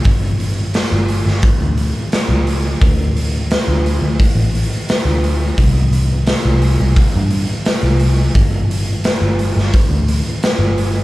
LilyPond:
<<
  \new Staff \with { instrumentName = "Picked electric bass" } { \clef bass \time 4/4 \key d \dorian \tempo 4 = 87 g,,4~ g,,16 g,,8 g,,16 r16 d,8 r8 cis,8. | d,4~ d,16 d,8 d,16 r16 a,,8 r8 d,8. | c,4~ c,16 c,8 c,16 r16 g,8 r8 c,8. | g,,4~ g,,16 g,,8 g,,16 r16 d,8 r8 g,,8. | }
  \new DrumStaff \with { instrumentName = "Drums" } \drummode { \time 4/4 <hho bd>8 hho8 <hho sn>8 hho16 sn16 <hho bd>8 hho8 <hho sn>8 hho8 | <hho bd>8 hho8 <hho sn>8 hho8 <hho bd>8 hho8 <hho sn>8 hho8 | <hho bd>8 hho8 <hho sn>8 hho8 <hho bd>8 hho8 <hho sn>8 hho8 | <hho bd>8 hho8 <hho sn>8 hho16 sn16 <hho bd>8 hho8 <hho sn>8 hho8 | }
>>